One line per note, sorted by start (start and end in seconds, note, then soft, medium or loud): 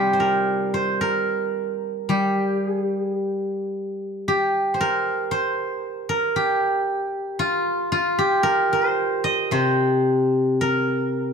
0.00 1.00 C3 soft
0.00 2.08 G3 soft
0.00 0.56 C4 soft
0.00 2.05 D#4 soft
0.00 2.16 F4 soft
0.00 2.09 G4 medium
0.13 0.73 C5 soft
0.20 1.01 A#4 medium
0.74 2.72 C5 medium
1.01 3.13 A#4 medium
2.09 5.33 G3 soft
2.09 2.66 G4 medium
2.66 2.81 G#4 medium
2.81 2.98 G4 medium
2.98 3.13 G#4 medium
3.13 4.28 G4 medium
4.28 6.36 G4 medium
4.74 5.31 C5 soft
4.81 6.09 A#4 medium
5.31 7.29 C5 medium
6.09 8.22 A#4 medium
6.36 8.18 G4 medium
7.39 7.91 F4 medium
7.92 10.44 F4 medium
8.19 10.54 G4 medium
8.43 10.56 A#4 medium
8.73 9.51 C5 medium
9.24 11.03 D#5 medium
9.51 11.33 C3 medium
9.51 11.33 C5 medium
10.61 11.33 A#4 medium